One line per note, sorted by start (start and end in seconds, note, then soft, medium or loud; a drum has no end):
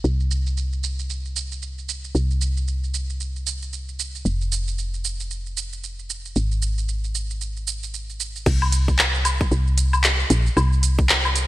0.04 2.13 C2 medium
0.04 shaker soft
0.20 shaker soft
0.31 shaker medium
0.47 shaker soft
0.57 shaker soft
0.73 shaker soft
0.84 shaker medium
0.99 shaker soft
1.10 shaker soft
1.25 shaker soft
1.36 shaker medium
1.52 shaker soft
1.62 shaker soft
1.78 shaker soft
1.89 shaker medium
2.04 shaker soft
2.15 4.23 C2 medium
2.15 shaker soft
2.31 shaker soft
2.41 shaker medium
2.57 shaker soft
2.68 shaker soft
2.84 shaker soft
2.94 shaker medium
3.10 shaker soft
3.20 shaker soft
3.36 shaker soft
3.47 shaker medium
3.62 shaker soft
3.73 shaker soft
3.89 shaker soft
3.99 shaker medium
4.15 shaker soft
4.25 6.34 F1 medium
4.25 shaker soft
4.41 shaker soft
4.52 shaker medium
4.68 shaker soft
4.78 shaker soft
4.94 shaker soft
5.05 shaker medium
5.20 shaker soft
5.31 shaker soft
5.46 shaker soft
5.57 shaker medium
5.73 shaker soft
5.84 shaker soft
5.99 shaker soft
6.10 shaker medium
6.25 shaker soft
6.36 8.44 G#1 medium
6.36 shaker soft
6.52 shaker soft
6.62 shaker medium
6.78 shaker soft
6.89 shaker soft
7.04 shaker soft
7.15 shaker medium
7.31 shaker soft
7.41 shaker soft
7.57 shaker soft
7.67 shaker medium
7.83 shaker soft
7.94 shaker soft
8.10 shaker soft
8.20 shaker medium
8.36 shaker soft
8.46 9.45 C2 medium
8.46 kick loud
8.46 crash loud
8.46 shaker soft
8.62 low woodblock medium
8.62 shaker soft
8.72 closed hi-hat medium
8.72 shaker medium
8.88 kick medium
8.88 shaker soft
8.99 clap loud
8.99 shaker soft
9.15 shaker soft
9.25 closed hi-hat medium
9.25 low woodblock medium
9.25 shaker medium
9.41 kick loud
9.41 shaker soft
9.51 10.24 C2 medium
9.51 shaker soft
9.67 shaker soft
9.78 closed hi-hat loud
9.78 shaker medium
9.93 low woodblock medium
9.93 shaker soft
10.04 clap loud
10.04 shaker soft
10.20 shaker soft
10.30 10.49 A#1 loud
10.30 closed hi-hat medium
10.30 shaker medium
10.46 shaker soft
10.57 11.47 C2 medium
10.57 low woodblock medium
10.57 shaker soft
10.73 shaker soft
10.83 closed hi-hat loud
10.83 shaker medium
10.99 kick loud
10.99 shaker soft
11.09 clap loud
11.09 shaker soft
11.25 low woodblock medium
11.25 shaker soft
11.36 closed hi-hat medium
11.36 shaker medium